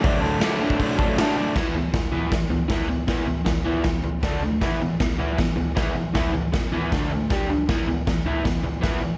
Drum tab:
CC |----------------|x---------------|----------------|----------------|
HH |o---o---o---o---|----------------|----------------|----------------|
SD |----o-------o---|o---o---o---o---|o---o---o---o---|o---o---o---o---|
FT |----------------|o-o-o-o-o-o-o-o-|o-o-o-o-o-o-o-o-|o-o-o-o-o-o-o-o-|
BD |o------oo-o-----|o---o---o---o---|o---o---o---o---|o---o---o---o---|

CC |----------------|----------------|
HH |----------------|----------------|
SD |o---o---o---o---|o---o---o---o---|
FT |o-o-o-o-o-o-o-o-|o-o-o-o-o-o-o-o-|
BD |o---o---o---o---|o---o---o---o---|